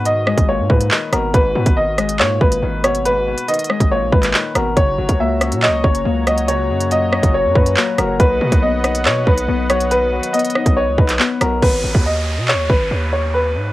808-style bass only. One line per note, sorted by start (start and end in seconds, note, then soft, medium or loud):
0.00 0.35 G#2 loud
0.37 0.61 G#1 loud
0.59 0.69 G#2 loud
0.70 0.90 G#2 loud
1.13 1.33 G#1 loud
1.34 1.55 G#1 loud
1.55 1.66 G#2 loud
1.66 2.21 G#1 loud
2.20 2.40 G#2 loud
2.41 2.62 G#1 loud
2.63 3.35 G#1 loud
3.80 4.03 G#1 loud
4.02 4.12 A#1 loud
4.13 4.33 G#1 loud
4.55 4.76 G#1 loud
4.77 4.97 F#1 loud
4.98 5.09 F#1 loud
5.09 5.53 C#2 loud
5.52 5.69 A#2 loud
5.68 5.83 C#2 loud
5.84 6.05 F#1 loud
6.05 6.71 C#2 loud
6.70 7.20 F#2 loud
7.23 7.46 F#1 loud
7.45 7.55 F#2 loud
7.55 7.76 F#2 loud
7.98 8.19 F#1 loud
8.20 8.40 B1 loud
8.41 8.51 B2 loud
8.52 9.07 B1 loud
9.05 9.26 B2 loud
9.27 9.47 B1 loud
9.48 10.20 B1 loud
10.66 10.89 B1 loud
10.88 10.98 C#2 loud
10.98 11.19 B1 loud
11.41 11.62 B1 loud
11.63 11.83 G#1 loud
11.84 11.94 G#1 loud
11.95 12.39 D#2 loud
12.38 12.55 B2 loud
12.54 12.69 D#2 loud
12.70 12.90 G#1 loud
12.91 13.57 D#2 loud
13.55 13.73 G#2 loud